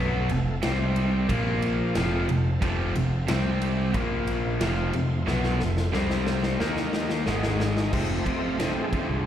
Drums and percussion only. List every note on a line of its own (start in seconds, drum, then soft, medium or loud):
0.29 ride medium
0.63 snare loud
0.63 ride medium
0.96 ride medium
1.29 kick loud
1.29 ride medium
1.62 ride medium
1.95 snare loud
1.95 ride medium
2.29 ride medium
2.62 kick loud
2.62 ride medium
2.96 ride medium
3.28 snare loud
3.28 ride loud
3.62 ride medium
3.94 kick loud
3.94 ride medium
4.27 ride medium
4.61 snare loud
4.61 ride medium
4.93 ride medium
5.27 snare medium
5.44 snare soft
5.60 snare medium
5.77 snare medium
5.93 snare medium
6.10 snare medium
6.27 snare medium
6.43 snare medium
6.60 snare medium
6.77 snare medium
6.93 snare medium
7.10 snare medium
7.26 snare medium
7.43 snare medium
7.60 snare medium
7.77 snare medium
7.93 kick loud
7.93 crash loud
8.26 kick medium
8.26 ride medium
8.60 snare loud
8.60 ride medium
8.93 kick medium
8.93 ride medium